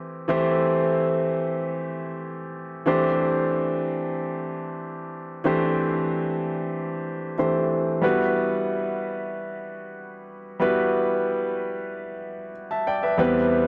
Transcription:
0.00 0.24 E3 medium
0.00 0.25 A3 medium
0.00 0.25 C4 medium
0.00 0.25 E4 medium
0.00 0.25 G4 medium
0.00 0.26 C5 medium
0.28 2.82 E3 medium
0.28 2.83 A3 medium
0.28 2.83 C4 medium
0.28 2.83 E4 medium
0.28 2.83 G4 medium
0.28 2.84 C5 medium
2.86 5.40 E3 medium
2.86 5.41 A3 medium
2.86 5.41 C4 medium
2.86 5.41 D4 medium
2.86 5.41 G4 medium
2.86 5.42 C5 medium
5.44 7.34 E3 medium
5.44 7.35 A3 medium
5.44 7.35 C4 medium
5.44 7.35 D4 medium
5.44 7.35 G4 medium
5.44 7.36 C5 medium
7.38 8.03 E3 medium
7.38 8.03 A3 soft
7.38 8.03 C4 medium
7.38 8.03 D4 soft
7.38 8.03 G4 soft
7.38 8.03 C5 medium
8.02 10.56 G3 medium
8.02 10.57 B3 medium
8.02 10.57 E4 medium
8.02 10.57 F#4 medium
8.02 10.58 B4 medium
10.60 13.14 G3 medium
10.60 13.15 B3 medium
10.60 13.15 E4 medium
10.60 13.15 F#4 medium
10.60 12.51 B4 medium
12.71 12.86 E5 medium
12.71 12.86 A5 medium
12.87 13.03 D5 medium
12.87 13.02 G5 medium
13.03 13.18 B4 medium
13.03 13.34 E5 medium
13.18 13.67 E2 medium
13.18 13.67 G3 medium
13.18 13.67 B3 medium
13.18 13.67 C4 medium
13.18 13.67 E4 medium
13.18 13.67 B4 medium

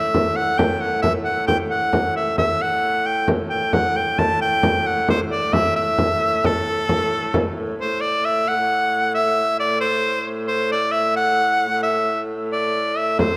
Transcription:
0.00 2.41 A2 medium
0.00 0.38 E5 medium
0.14 frame drum medium
0.36 0.59 F#5 loud
0.58 0.81 G5 medium
0.58 frame drum medium
0.80 1.02 F#5 medium
1.02 1.13 E5 medium
1.02 frame drum medium
1.25 1.46 F#5 medium
1.47 1.58 G5 medium
1.47 frame drum medium
1.71 2.13 F#5 medium
1.93 frame drum medium
2.15 2.37 E5 medium
2.15 frame drum soft
2.38 7.79 A2 medium
2.38 2.64 E5 medium
2.38 frame drum medium
2.62 3.07 F#5 medium
2.62 frame drum soft
3.06 3.28 G5 medium
3.28 frame drum medium
3.50 3.74 G5 medium
3.73 3.97 F#5 loud
3.73 frame drum medium
3.96 4.20 G5 medium
3.96 frame drum soft
4.19 4.41 A5 medium
4.19 frame drum medium
4.42 4.88 G5 loud
4.63 frame drum medium
4.86 5.09 F#5 medium
5.08 5.20 C5 medium
5.08 frame drum medium
5.31 5.55 D5 medium
5.31 frame drum soft
5.53 5.75 E5 medium
5.53 frame drum medium
5.76 6.47 E5 medium
5.98 frame drum medium
6.44 7.57 A4 medium
6.44 frame drum medium
6.68 frame drum soft
6.89 frame drum medium
7.34 frame drum medium
7.79 13.19 A2 medium
7.79 8.02 C5 medium
8.01 8.27 D5 medium
8.25 8.50 E5 medium
8.48 9.14 F#5 loud
9.15 9.56 E5 loud
9.60 9.80 D5 medium
9.81 10.28 C5 medium
10.48 10.69 C5 medium
10.72 10.93 D5 medium
10.92 11.15 E5 medium
11.16 11.80 F#5 loud
11.83 12.21 E5 medium
12.53 12.99 D5 medium
12.97 13.19 E5 medium
13.19 13.37 A2 medium
13.19 13.37 C5 medium
13.19 frame drum medium

